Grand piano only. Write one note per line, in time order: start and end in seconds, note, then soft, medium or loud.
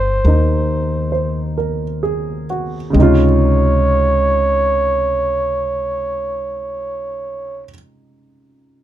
0.00 2.95 F#3 soft
0.00 0.23 A#3 soft
0.00 2.96 C4 soft
0.00 2.96 F4 medium
0.25 2.95 A#3 soft
0.25 2.97 D#4 soft
1.12 1.82 C5 soft
1.58 2.44 A#4 soft
2.03 2.76 G#4 soft
2.50 3.24 F#4 soft
2.90 7.62 C#3 medium
2.90 7.65 G#3 soft
2.96 7.68 C3 soft
2.96 7.71 D#4 soft
3.02 7.74 F4 medium